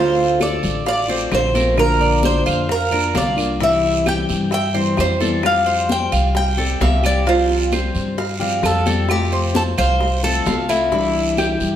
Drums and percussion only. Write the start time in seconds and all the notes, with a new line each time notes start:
0.17 high bongo, high conga
0.40 high bongo, high conga, short guiro, claves
0.63 high conga, short guiro
0.86 high bongo, high conga, long guiro
1.09 high bongo, high conga
1.32 high bongo, low bongo, high conga, short guiro, claves
1.55 high bongo, high conga, short guiro
1.78 high bongo, high conga, long guiro, claves
2.00 high bongo, high conga
2.23 high bongo, high conga, short guiro
2.46 high bongo, high conga, short guiro, claves
2.69 high bongo, high conga, long guiro
2.92 high bongo, high conga
3.15 high bongo, low bongo, high conga, short guiro
3.38 high conga, short guiro, claves
3.60 high bongo, high conga, long guiro
3.83 high bongo, high conga
4.06 high bongo, high conga, short guiro, claves
4.29 high conga, short guiro
4.51 high bongo, high conga, long guiro
4.74 high bongo, high conga
4.97 high bongo, low bongo, high conga, short guiro, claves
5.20 high bongo, high conga, short guiro
5.43 high bongo, high conga, long guiro, claves
5.66 high bongo, high conga
5.89 high bongo, high conga, short guiro
6.12 high bongo, high conga, short guiro, claves
6.35 high bongo, high conga, long guiro
6.58 high bongo, high conga
6.81 high bongo, low bongo, high conga, short guiro
7.04 high conga, short guiro, claves
7.27 high bongo, high conga, long guiro
7.50 high bongo, high conga
7.72 high bongo, high conga, short guiro, claves
7.95 high conga, short guiro
8.18 high bongo, high conga, long guiro
8.41 high bongo, high conga
8.63 high bongo, low bongo, high conga, short guiro, claves
8.86 high bongo, high conga, short guiro
9.09 high bongo, high conga, long guiro, claves
9.32 high bongo, high conga
9.54 high bongo, high conga, short guiro
9.78 high bongo, high conga, short guiro, claves
10.00 high bongo, high conga, long guiro
10.24 high bongo, high conga
10.46 high bongo, low bongo, high conga, short guiro
10.69 high conga, short guiro, claves
10.92 high bongo, high conga, long guiro
11.15 high bongo, high conga
11.37 high bongo, high conga, short guiro, claves
11.60 high conga, short guiro